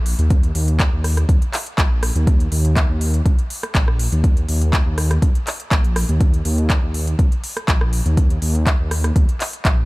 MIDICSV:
0, 0, Header, 1, 3, 480
1, 0, Start_track
1, 0, Tempo, 491803
1, 298, Time_signature, 4, 2, 24, 8
1, 9615, End_track
2, 0, Start_track
2, 0, Title_t, "Detuned saw bass"
2, 0, Program_c, 0, 39
2, 0, Note_on_c, 0, 34, 99
2, 138, Note_off_c, 0, 34, 0
2, 184, Note_on_c, 0, 39, 103
2, 496, Note_off_c, 0, 39, 0
2, 538, Note_on_c, 0, 39, 98
2, 858, Note_off_c, 0, 39, 0
2, 905, Note_on_c, 0, 39, 105
2, 1217, Note_off_c, 0, 39, 0
2, 1257, Note_on_c, 0, 39, 86
2, 1355, Note_off_c, 0, 39, 0
2, 1737, Note_on_c, 0, 34, 105
2, 2058, Note_off_c, 0, 34, 0
2, 2104, Note_on_c, 0, 39, 104
2, 2416, Note_off_c, 0, 39, 0
2, 2458, Note_on_c, 0, 39, 103
2, 2778, Note_off_c, 0, 39, 0
2, 2824, Note_on_c, 0, 39, 103
2, 3136, Note_off_c, 0, 39, 0
2, 3177, Note_on_c, 0, 37, 84
2, 3275, Note_off_c, 0, 37, 0
2, 3657, Note_on_c, 0, 34, 99
2, 3978, Note_off_c, 0, 34, 0
2, 4025, Note_on_c, 0, 39, 100
2, 4337, Note_off_c, 0, 39, 0
2, 4378, Note_on_c, 0, 39, 100
2, 4698, Note_off_c, 0, 39, 0
2, 4745, Note_on_c, 0, 39, 106
2, 5057, Note_off_c, 0, 39, 0
2, 5097, Note_on_c, 0, 37, 88
2, 5195, Note_off_c, 0, 37, 0
2, 5577, Note_on_c, 0, 34, 103
2, 5897, Note_off_c, 0, 34, 0
2, 5944, Note_on_c, 0, 39, 89
2, 6256, Note_off_c, 0, 39, 0
2, 6297, Note_on_c, 0, 39, 99
2, 6618, Note_off_c, 0, 39, 0
2, 6664, Note_on_c, 0, 39, 106
2, 6976, Note_off_c, 0, 39, 0
2, 7017, Note_on_c, 0, 37, 86
2, 7115, Note_off_c, 0, 37, 0
2, 7497, Note_on_c, 0, 34, 101
2, 7818, Note_off_c, 0, 34, 0
2, 7864, Note_on_c, 0, 39, 102
2, 8176, Note_off_c, 0, 39, 0
2, 8218, Note_on_c, 0, 39, 97
2, 8538, Note_off_c, 0, 39, 0
2, 8585, Note_on_c, 0, 39, 102
2, 8897, Note_off_c, 0, 39, 0
2, 8938, Note_on_c, 0, 39, 87
2, 9036, Note_off_c, 0, 39, 0
2, 9418, Note_on_c, 0, 34, 103
2, 9615, Note_off_c, 0, 34, 0
2, 9615, End_track
3, 0, Start_track
3, 0, Title_t, "Drums"
3, 57, Note_on_c, 9, 46, 106
3, 155, Note_off_c, 9, 46, 0
3, 184, Note_on_c, 9, 42, 55
3, 282, Note_off_c, 9, 42, 0
3, 297, Note_on_c, 9, 36, 122
3, 297, Note_on_c, 9, 42, 76
3, 395, Note_off_c, 9, 36, 0
3, 395, Note_off_c, 9, 42, 0
3, 424, Note_on_c, 9, 42, 36
3, 521, Note_off_c, 9, 42, 0
3, 537, Note_on_c, 9, 46, 108
3, 635, Note_off_c, 9, 46, 0
3, 664, Note_on_c, 9, 42, 54
3, 761, Note_off_c, 9, 42, 0
3, 777, Note_on_c, 9, 36, 110
3, 777, Note_on_c, 9, 42, 77
3, 779, Note_on_c, 9, 39, 124
3, 875, Note_off_c, 9, 36, 0
3, 875, Note_off_c, 9, 42, 0
3, 877, Note_off_c, 9, 39, 0
3, 1018, Note_on_c, 9, 37, 61
3, 1018, Note_on_c, 9, 46, 107
3, 1116, Note_off_c, 9, 37, 0
3, 1116, Note_off_c, 9, 46, 0
3, 1145, Note_on_c, 9, 37, 61
3, 1145, Note_on_c, 9, 42, 54
3, 1242, Note_off_c, 9, 37, 0
3, 1242, Note_off_c, 9, 42, 0
3, 1257, Note_on_c, 9, 36, 125
3, 1259, Note_on_c, 9, 42, 79
3, 1355, Note_off_c, 9, 36, 0
3, 1356, Note_off_c, 9, 42, 0
3, 1385, Note_on_c, 9, 42, 38
3, 1483, Note_off_c, 9, 42, 0
3, 1498, Note_on_c, 9, 46, 112
3, 1500, Note_on_c, 9, 39, 64
3, 1596, Note_off_c, 9, 46, 0
3, 1597, Note_off_c, 9, 39, 0
3, 1624, Note_on_c, 9, 42, 52
3, 1722, Note_off_c, 9, 42, 0
3, 1737, Note_on_c, 9, 36, 109
3, 1739, Note_on_c, 9, 42, 79
3, 1740, Note_on_c, 9, 39, 125
3, 1835, Note_off_c, 9, 36, 0
3, 1836, Note_off_c, 9, 42, 0
3, 1838, Note_off_c, 9, 39, 0
3, 1979, Note_on_c, 9, 37, 76
3, 1979, Note_on_c, 9, 46, 110
3, 2076, Note_off_c, 9, 37, 0
3, 2076, Note_off_c, 9, 46, 0
3, 2105, Note_on_c, 9, 42, 53
3, 2202, Note_off_c, 9, 42, 0
3, 2218, Note_on_c, 9, 36, 125
3, 2218, Note_on_c, 9, 42, 74
3, 2315, Note_off_c, 9, 36, 0
3, 2316, Note_off_c, 9, 42, 0
3, 2345, Note_on_c, 9, 42, 35
3, 2443, Note_off_c, 9, 42, 0
3, 2458, Note_on_c, 9, 46, 115
3, 2555, Note_off_c, 9, 46, 0
3, 2585, Note_on_c, 9, 42, 51
3, 2683, Note_off_c, 9, 42, 0
3, 2698, Note_on_c, 9, 36, 112
3, 2699, Note_on_c, 9, 42, 79
3, 2701, Note_on_c, 9, 39, 120
3, 2795, Note_off_c, 9, 36, 0
3, 2796, Note_off_c, 9, 42, 0
3, 2798, Note_off_c, 9, 39, 0
3, 2938, Note_on_c, 9, 46, 108
3, 3036, Note_off_c, 9, 46, 0
3, 3065, Note_on_c, 9, 42, 52
3, 3162, Note_off_c, 9, 42, 0
3, 3178, Note_on_c, 9, 36, 127
3, 3178, Note_on_c, 9, 42, 78
3, 3275, Note_off_c, 9, 36, 0
3, 3276, Note_off_c, 9, 42, 0
3, 3305, Note_on_c, 9, 42, 35
3, 3403, Note_off_c, 9, 42, 0
3, 3419, Note_on_c, 9, 46, 111
3, 3517, Note_off_c, 9, 46, 0
3, 3546, Note_on_c, 9, 37, 67
3, 3546, Note_on_c, 9, 42, 52
3, 3644, Note_off_c, 9, 37, 0
3, 3644, Note_off_c, 9, 42, 0
3, 3658, Note_on_c, 9, 36, 110
3, 3659, Note_on_c, 9, 42, 78
3, 3660, Note_on_c, 9, 39, 123
3, 3755, Note_off_c, 9, 36, 0
3, 3756, Note_off_c, 9, 42, 0
3, 3758, Note_off_c, 9, 39, 0
3, 3786, Note_on_c, 9, 37, 64
3, 3883, Note_off_c, 9, 37, 0
3, 3899, Note_on_c, 9, 46, 109
3, 3996, Note_off_c, 9, 46, 0
3, 4025, Note_on_c, 9, 42, 51
3, 4122, Note_off_c, 9, 42, 0
3, 4137, Note_on_c, 9, 36, 119
3, 4138, Note_on_c, 9, 42, 73
3, 4235, Note_off_c, 9, 36, 0
3, 4236, Note_off_c, 9, 42, 0
3, 4264, Note_on_c, 9, 42, 37
3, 4362, Note_off_c, 9, 42, 0
3, 4378, Note_on_c, 9, 46, 108
3, 4475, Note_off_c, 9, 46, 0
3, 4505, Note_on_c, 9, 42, 52
3, 4602, Note_off_c, 9, 42, 0
3, 4617, Note_on_c, 9, 36, 112
3, 4618, Note_on_c, 9, 42, 76
3, 4620, Note_on_c, 9, 39, 119
3, 4715, Note_off_c, 9, 36, 0
3, 4716, Note_off_c, 9, 42, 0
3, 4718, Note_off_c, 9, 39, 0
3, 4858, Note_on_c, 9, 37, 66
3, 4858, Note_on_c, 9, 46, 109
3, 4955, Note_off_c, 9, 37, 0
3, 4955, Note_off_c, 9, 46, 0
3, 4985, Note_on_c, 9, 37, 66
3, 4985, Note_on_c, 9, 42, 50
3, 5082, Note_off_c, 9, 37, 0
3, 5082, Note_off_c, 9, 42, 0
3, 5097, Note_on_c, 9, 36, 123
3, 5098, Note_on_c, 9, 42, 75
3, 5195, Note_off_c, 9, 36, 0
3, 5195, Note_off_c, 9, 42, 0
3, 5224, Note_on_c, 9, 42, 35
3, 5322, Note_off_c, 9, 42, 0
3, 5337, Note_on_c, 9, 46, 110
3, 5339, Note_on_c, 9, 39, 61
3, 5435, Note_off_c, 9, 46, 0
3, 5437, Note_off_c, 9, 39, 0
3, 5464, Note_on_c, 9, 42, 52
3, 5561, Note_off_c, 9, 42, 0
3, 5577, Note_on_c, 9, 36, 108
3, 5577, Note_on_c, 9, 42, 74
3, 5579, Note_on_c, 9, 39, 115
3, 5674, Note_off_c, 9, 36, 0
3, 5675, Note_off_c, 9, 42, 0
3, 5676, Note_off_c, 9, 39, 0
3, 5704, Note_on_c, 9, 42, 36
3, 5802, Note_off_c, 9, 42, 0
3, 5817, Note_on_c, 9, 37, 80
3, 5817, Note_on_c, 9, 46, 111
3, 5915, Note_off_c, 9, 37, 0
3, 5915, Note_off_c, 9, 46, 0
3, 5944, Note_on_c, 9, 42, 49
3, 6041, Note_off_c, 9, 42, 0
3, 6057, Note_on_c, 9, 36, 120
3, 6057, Note_on_c, 9, 42, 74
3, 6154, Note_off_c, 9, 36, 0
3, 6154, Note_off_c, 9, 42, 0
3, 6184, Note_on_c, 9, 42, 36
3, 6281, Note_off_c, 9, 42, 0
3, 6297, Note_on_c, 9, 46, 109
3, 6394, Note_off_c, 9, 46, 0
3, 6424, Note_on_c, 9, 42, 51
3, 6521, Note_off_c, 9, 42, 0
3, 6537, Note_on_c, 9, 36, 107
3, 6538, Note_on_c, 9, 42, 75
3, 6539, Note_on_c, 9, 39, 115
3, 6634, Note_off_c, 9, 36, 0
3, 6635, Note_off_c, 9, 42, 0
3, 6637, Note_off_c, 9, 39, 0
3, 6777, Note_on_c, 9, 46, 102
3, 6875, Note_off_c, 9, 46, 0
3, 6905, Note_on_c, 9, 42, 51
3, 7002, Note_off_c, 9, 42, 0
3, 7017, Note_on_c, 9, 36, 124
3, 7018, Note_on_c, 9, 42, 75
3, 7114, Note_off_c, 9, 36, 0
3, 7116, Note_off_c, 9, 42, 0
3, 7144, Note_on_c, 9, 42, 36
3, 7242, Note_off_c, 9, 42, 0
3, 7258, Note_on_c, 9, 46, 107
3, 7355, Note_off_c, 9, 46, 0
3, 7385, Note_on_c, 9, 37, 69
3, 7385, Note_on_c, 9, 42, 51
3, 7483, Note_off_c, 9, 37, 0
3, 7483, Note_off_c, 9, 42, 0
3, 7497, Note_on_c, 9, 36, 107
3, 7498, Note_on_c, 9, 42, 77
3, 7500, Note_on_c, 9, 39, 113
3, 7595, Note_off_c, 9, 36, 0
3, 7596, Note_off_c, 9, 42, 0
3, 7597, Note_off_c, 9, 39, 0
3, 7625, Note_on_c, 9, 37, 70
3, 7722, Note_off_c, 9, 37, 0
3, 7738, Note_on_c, 9, 46, 108
3, 7835, Note_off_c, 9, 46, 0
3, 7864, Note_on_c, 9, 42, 51
3, 7962, Note_off_c, 9, 42, 0
3, 7977, Note_on_c, 9, 36, 112
3, 7978, Note_on_c, 9, 42, 78
3, 8075, Note_off_c, 9, 36, 0
3, 8075, Note_off_c, 9, 42, 0
3, 8105, Note_on_c, 9, 42, 37
3, 8202, Note_off_c, 9, 42, 0
3, 8218, Note_on_c, 9, 46, 101
3, 8315, Note_off_c, 9, 46, 0
3, 8345, Note_on_c, 9, 42, 52
3, 8442, Note_off_c, 9, 42, 0
3, 8458, Note_on_c, 9, 36, 104
3, 8458, Note_on_c, 9, 42, 81
3, 8460, Note_on_c, 9, 39, 116
3, 8555, Note_off_c, 9, 36, 0
3, 8556, Note_off_c, 9, 42, 0
3, 8557, Note_off_c, 9, 39, 0
3, 8698, Note_on_c, 9, 37, 69
3, 8698, Note_on_c, 9, 46, 101
3, 8796, Note_off_c, 9, 37, 0
3, 8796, Note_off_c, 9, 46, 0
3, 8825, Note_on_c, 9, 37, 67
3, 8825, Note_on_c, 9, 42, 53
3, 8923, Note_off_c, 9, 37, 0
3, 8923, Note_off_c, 9, 42, 0
3, 8938, Note_on_c, 9, 36, 122
3, 8938, Note_on_c, 9, 42, 79
3, 9036, Note_off_c, 9, 36, 0
3, 9036, Note_off_c, 9, 42, 0
3, 9065, Note_on_c, 9, 42, 37
3, 9163, Note_off_c, 9, 42, 0
3, 9178, Note_on_c, 9, 46, 100
3, 9180, Note_on_c, 9, 39, 61
3, 9276, Note_off_c, 9, 46, 0
3, 9277, Note_off_c, 9, 39, 0
3, 9305, Note_on_c, 9, 42, 52
3, 9402, Note_off_c, 9, 42, 0
3, 9418, Note_on_c, 9, 36, 102
3, 9418, Note_on_c, 9, 42, 78
3, 9420, Note_on_c, 9, 39, 114
3, 9515, Note_off_c, 9, 36, 0
3, 9516, Note_off_c, 9, 42, 0
3, 9517, Note_off_c, 9, 39, 0
3, 9615, End_track
0, 0, End_of_file